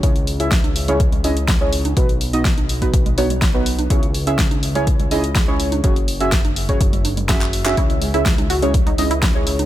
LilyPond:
<<
  \new Staff \with { instrumentName = "Synth stab" } { \time 4/4 \key cis \minor \tempo 4 = 124 <cis' e' gis' cis''>16 r8 <cis' e' gis' e''>16 r8. <cis' e' gis' cis''>16 r8 <cis' e' gis' dis''>16 r8 <cis' e' gis' cis''>8. | <b dis' fis' b'>16 r8 <b dis' fis' dis''>16 r8. <b dis' fis' b'>16 r8 <b dis' fis' cis''>16 r8 <b dis' fis' b'>8. | <cis' e' gis' cis''>16 r8 <cis' e' gis' e''>16 r8. <cis' e' gis' cis''>16 r8 <cis' e' gis' dis''>16 r8 <cis' e' gis' cis''>8. | <cis' fis' gis' cis''>16 r8 <cis' fis' gis' e''>16 r8. <cis' fis' gis' cis''>16 r4 <cis' fis' gis' e''>8. <cis' fis' gis' e''>16 |
<cis' e' cis''>16 r8 <cis' e' gis' e''>16 r8. <cis' e' gis' cis''>16 r8 <cis' e' gis' dis''>16 r8 <cis' e' gis' cis''>8. | }
  \new Staff \with { instrumentName = "Synth pluck" } { \clef bass \time 4/4 \key cis \minor r1 | r1 | r1 | r1 |
e'16 gis16 gis16 e'16 gis16 gis16 fis'16 gis16 gis16 dis'16 gis16 e'4 r16 | }
  \new Staff \with { instrumentName = "Analog synth bass" } { \clef bass \time 4/4 \key cis \minor cis,1 | b,,1 | cis,1 | fis,,1 |
cis,1 | }
  \new DrumStaff \with { instrumentName = "Drums" } \drummode { \time 4/4 <hh bd>16 hh16 hho16 hh16 <hh bd sn>16 <cgho hh>16 hho16 <cgl hh>16 <hh bd>16 <cgl hh>16 <cgho hho>16 hh16 <hh bd sn>8 hho16 <cgho hh>16 | <hh bd>16 hh16 hho16 hh16 <hh bd sn>16 <cgho hh>16 hho16 <cgl hh bd>16 <hh bd>16 <cgl hh>16 <cgho hho>16 <cgl hh>16 <hh bd sn>8 hho16 <cgho hh>16 | <hh bd>16 hh16 hho16 hh16 <hh bd sn>16 <cgho hh>16 hho16 <cgl hh>16 <hh bd>16 <cgl hh>16 <cgho hho>16 hh16 <hh bd sn>8 hho16 <cgho hh>16 | <hh bd>16 hh16 hho16 hh16 <hh bd sn>16 <cgho hh>16 hho16 <cgl hh bd>16 <hh bd>16 <cgl hh>16 <cgho hho>16 <cgl hh>16 <hh bd sn>16 <hc hh>16 hho16 <hc cgho hh>16 |
<hh bd>16 hh16 hho16 hh16 <hh bd sn>16 <cgho hh>16 hho16 <cgl hh>16 <hh bd>16 <cgl hh>16 <cgho hho>16 hh16 <hh bd sn>8 hho16 <cgho hh>16 | }
>>